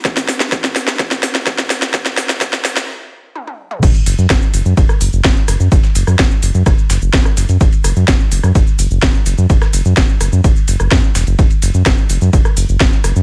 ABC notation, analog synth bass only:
X:1
M:4/4
L:1/16
Q:1/4=127
K:Edor
V:1 name="Analog synth bass" clef=bass
z16 | z16 | F,,, z F,,, F,, F,,, z F,,, F,, F,,, z F,,, F,,, F,,, z F,,, F,, | F,,, z F,,, F,, F,,, z F,,, F,, F,,, z F,,, F,,, F,,, z F,,, F,, |
F,,, z F,,, F,, F,,, z F,,, F,, F,,, z F,,, F,,, F,,, z F,,, F,, | F,,, z F,,, F,, F,,, z F,,, F,, F,,, z F,,, F,,, F,, z E,,, F,,, | F,,, z F,,, F,, F,,, z F,,, F,, F,,, z F,,, F,,, F,,, z F,,, F,, |]